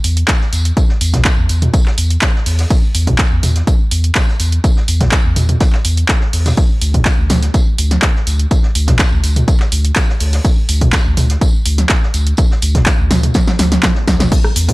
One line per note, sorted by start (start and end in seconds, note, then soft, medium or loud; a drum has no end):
0.04 0.24 E2 medium
0.04 open hi-hat loud
0.04 tambourine medium
0.17 closed hi-hat medium
0.27 kick loud
0.27 snare loud
0.27 clap loud
0.27 closed hi-hat medium
0.27 tambourine medium
0.41 snare soft
0.53 0.72 E2 medium
0.53 open hi-hat medium
0.53 tambourine medium
0.65 closed hi-hat medium
0.77 kick loud
0.77 closed hi-hat soft
0.77 tambourine medium
0.89 snare soft
1.01 1.20 E2 loud
1.01 open hi-hat loud
1.01 tambourine medium
1.14 kick medium
1.14 snare soft
1.14 closed hi-hat medium
1.14 mid tom medium
1.25 kick loud
1.25 snare loud
1.25 clap loud
1.25 closed hi-hat medium
1.25 tambourine medium
1.38 1.47 E2 medium
1.49 1.69 E2 medium
1.49 open hi-hat medium
1.49 tambourine medium
1.62 closed hi-hat medium
1.62 mid tom medium
1.73 kick loud
1.73 closed hi-hat medium
1.73 tambourine medium
1.86 snare soft
1.86 clap soft
1.98 2.17 E2 medium
1.98 open hi-hat loud
1.98 tambourine medium
2.10 closed hi-hat medium
2.21 kick loud
2.21 snare loud
2.21 clap loud
2.21 closed hi-hat medium
2.21 tambourine medium
2.36 snare soft
2.46 2.66 E2 medium
2.46 open hi-hat medium
2.59 snare soft
2.59 closed hi-hat medium
2.70 kick loud
2.70 closed hi-hat soft
2.70 tambourine medium
2.95 3.14 E2 loud
2.95 open hi-hat loud
2.95 tambourine medium
3.07 kick medium
3.07 closed hi-hat medium
3.07 mid tom medium
3.18 kick loud
3.18 snare loud
3.18 clap loud
3.18 closed hi-hat soft
3.18 tambourine medium
3.31 3.41 E2 medium
3.43 3.62 E2 medium
3.43 mid tom medium
3.43 open hi-hat medium
3.43 tambourine medium
3.56 snare soft
3.56 closed hi-hat medium
3.67 kick loud
3.67 closed hi-hat soft
3.67 tambourine medium
3.91 4.11 E2 medium
3.91 open hi-hat loud
3.91 tambourine medium
4.04 closed hi-hat medium
4.15 kick loud
4.15 snare loud
4.15 clap loud
4.15 closed hi-hat medium
4.15 tambourine medium
4.28 snare soft
4.40 4.59 E2 medium
4.40 open hi-hat medium
4.40 tambourine medium
4.52 closed hi-hat medium
4.64 kick loud
4.64 closed hi-hat soft
4.64 tambourine medium
4.76 snare soft
4.88 5.08 E2 loud
4.88 open hi-hat loud
4.88 tambourine medium
5.01 kick medium
5.01 snare soft
5.01 closed hi-hat medium
5.01 mid tom medium
5.12 kick loud
5.12 snare loud
5.12 clap loud
5.12 closed hi-hat soft
5.12 tambourine medium
5.25 5.34 E2 medium
5.36 5.56 E2 medium
5.36 mid tom medium
5.36 open hi-hat medium
5.36 tambourine medium
5.49 closed hi-hat medium
5.49 mid tom medium
5.60 kick loud
5.60 snare loud
5.60 closed hi-hat soft
5.60 tambourine medium
5.73 snare medium
5.73 clap soft
5.85 6.04 E2 medium
5.85 open hi-hat loud
5.85 tambourine medium
5.97 closed hi-hat medium
6.09 kick loud
6.09 snare loud
6.09 clap loud
6.09 closed hi-hat soft
6.09 tambourine medium
6.21 snare medium
6.33 6.53 E2 medium
6.33 open hi-hat medium
6.46 snare loud
6.46 closed hi-hat medium
6.46 mid tom medium
6.46 tambourine medium
6.57 kick loud
6.57 closed hi-hat soft
6.57 tambourine medium
6.82 7.01 D2 loud
6.82 open hi-hat loud
6.82 tambourine medium
6.94 kick medium
6.94 closed hi-hat medium
6.94 mid tom medium
7.05 kick loud
7.05 snare loud
7.05 clap loud
7.05 closed hi-hat medium
7.05 tambourine medium
7.18 7.28 D2 medium
7.30 7.49 D2 medium
7.30 snare medium
7.30 mid tom medium
7.30 open hi-hat medium
7.30 tambourine medium
7.42 snare soft
7.42 closed hi-hat medium
7.54 kick loud
7.54 closed hi-hat soft
7.54 tambourine medium
7.78 7.98 D2 medium
7.78 open hi-hat loud
7.78 tambourine medium
7.91 snare soft
7.91 closed hi-hat medium
8.02 kick loud
8.02 snare loud
8.02 clap loud
8.02 closed hi-hat medium
8.02 tambourine medium
8.16 snare soft
8.27 8.46 D2 medium
8.27 open hi-hat medium
8.27 tambourine medium
8.39 closed hi-hat medium
8.51 kick loud
8.51 closed hi-hat medium
8.51 tambourine medium
8.63 snare soft
8.75 8.95 D2 loud
8.75 open hi-hat loud
8.75 tambourine medium
8.87 kick medium
8.87 snare soft
8.87 closed hi-hat medium
8.87 mid tom medium
8.99 kick loud
8.99 snare loud
8.99 clap loud
8.99 closed hi-hat medium
8.99 tambourine medium
9.12 9.21 D2 medium
9.24 9.43 D2 medium
9.24 open hi-hat medium
9.24 tambourine medium
9.36 closed hi-hat medium
9.36 mid tom medium
9.48 kick loud
9.48 closed hi-hat medium
9.48 tambourine medium
9.60 snare soft
9.60 clap soft
9.72 9.91 D2 medium
9.72 open hi-hat loud
9.72 tambourine medium
9.85 closed hi-hat medium
9.96 kick loud
9.96 snare loud
9.96 clap loud
9.96 closed hi-hat medium
9.96 tambourine medium
10.09 snare medium
10.20 10.40 D2 medium
10.20 open hi-hat medium
10.33 snare soft
10.33 closed hi-hat medium
10.44 kick loud
10.44 closed hi-hat medium
10.44 tambourine medium
10.69 10.88 D2 loud
10.69 open hi-hat loud
10.69 tambourine medium
10.81 kick medium
10.81 closed hi-hat medium
10.81 mid tom medium
10.93 kick loud
10.93 snare loud
10.93 clap loud
10.93 closed hi-hat medium
10.93 tambourine medium
11.06 11.15 D2 medium
11.17 11.37 D2 medium
11.17 mid tom medium
11.17 open hi-hat medium
11.17 tambourine medium
11.30 snare soft
11.30 closed hi-hat medium
11.41 kick loud
11.41 closed hi-hat medium
11.41 tambourine medium
11.66 11.85 D2 medium
11.66 open hi-hat loud
11.66 tambourine medium
11.78 snare soft
11.78 closed hi-hat medium
11.89 kick loud
11.89 snare loud
11.89 clap loud
11.89 closed hi-hat medium
11.89 tambourine medium
12.03 snare soft
12.14 12.33 D2 medium
12.14 open hi-hat medium
12.14 tambourine medium
12.27 closed hi-hat medium
12.37 kick loud
12.37 closed hi-hat medium
12.37 tambourine medium
12.51 snare soft
12.62 12.82 D2 loud
12.62 open hi-hat loud
12.62 tambourine medium
12.75 kick medium
12.75 snare soft
12.75 closed hi-hat medium
12.75 mid tom medium
12.86 kick loud
12.86 snare loud
12.86 clap loud
12.86 closed hi-hat medium
12.86 tambourine medium
12.99 13.08 D2 medium
13.11 13.30 D2 medium
13.11 snare medium
13.11 mid tom medium
13.11 open hi-hat medium
13.11 tambourine medium
13.23 closed hi-hat medium
13.23 mid tom medium
13.34 kick loud
13.34 snare medium
13.34 closed hi-hat medium
13.34 tambourine loud
13.47 snare medium
13.47 snare soft
13.59 13.78 D2 medium
13.59 snare medium
13.59 open hi-hat loud
13.59 tambourine medium
13.72 snare medium
13.72 closed hi-hat medium
13.83 kick loud
13.83 snare medium
13.83 snare loud
13.83 clap loud
13.83 closed hi-hat medium
13.83 tambourine medium
13.95 snare medium
14.07 14.27 D2 medium
14.07 kick medium
14.07 snare loud
14.07 open hi-hat medium
14.07 tambourine medium
14.20 snare loud
14.20 snare medium
14.20 closed hi-hat medium
14.20 mid tom medium
14.20 tambourine medium
14.32 kick loud
14.32 closed hi-hat medium
14.32 crash loud
14.32 tambourine medium
14.32 cabasa soft
14.44 cross-stick medium
14.56 14.73 E2 loud
14.56 open hi-hat loud
14.56 tambourine medium
14.56 cabasa medium
14.69 kick medium
14.69 closed hi-hat medium
14.69 mid tom medium
14.69 cabasa soft